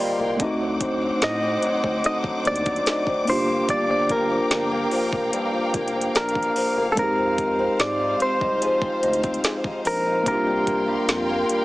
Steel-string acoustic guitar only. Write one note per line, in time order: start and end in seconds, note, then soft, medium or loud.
0.00 0.39 C3 medium
0.00 0.48 G3 medium
0.00 0.18 A#3 medium
0.00 0.40 F4 medium
0.19 0.48 A#3 medium
0.40 2.04 D3 medium
0.40 1.21 D#4 medium
0.60 1.00 F#3 medium
0.81 1.42 C4 medium
1.02 1.62 F#3 medium
1.22 2.04 D#4 medium
1.43 1.83 C4 medium
1.63 2.24 F#3 medium
1.84 2.44 C4 medium
2.04 5.54 D3 medium
2.04 2.85 D#4 medium
2.25 2.65 F#3 medium
2.45 3.05 C4 medium
2.66 3.36 F#3 medium
2.86 3.36 D#4 medium
3.07 3.36 C4 medium
3.27 3.67 G2 medium
3.48 4.08 A#3 medium
3.68 5.32 G2 medium
3.68 4.50 D4 medium
3.89 4.30 F3 medium
4.09 4.70 A#3 medium
4.30 4.91 F3 medium
4.51 5.32 D4 medium
4.71 5.11 A#3 medium
4.92 5.53 F3 medium
5.12 5.73 A#3 medium
5.33 7.05 G2 medium
5.33 6.14 D4 medium
5.54 5.94 F3 medium
5.74 6.34 A#3 medium
5.94 6.56 F3 medium
6.15 7.06 D4 medium
6.36 6.76 A#3 medium
6.56 6.97 F3 medium
6.77 7.06 A#3 medium
6.97 8.61 F3 medium
6.97 7.79 G#4 medium
7.18 7.59 C4 medium
7.38 7.99 D#4 medium
7.59 8.20 C4 medium
7.80 8.61 G#4 medium
8.00 8.40 D#4 medium
8.21 8.82 C4 medium
8.41 9.01 D#4 medium
8.61 10.46 F3 medium
8.61 9.43 G#4 medium
8.82 9.23 C4 medium
9.03 9.63 D#4 medium
9.23 9.85 C4 medium
9.44 10.34 G#4 medium
9.64 10.05 D#4 medium
9.85 10.67 C4 medium
10.06 10.26 D#4 medium
10.26 11.65 C3 medium
10.26 11.07 F4 medium
10.47 10.86 G3 medium
10.67 11.28 A#3 medium
10.88 11.49 G3 medium
11.08 11.65 F4 medium
11.29 11.65 A#3 medium
11.50 11.65 G3 medium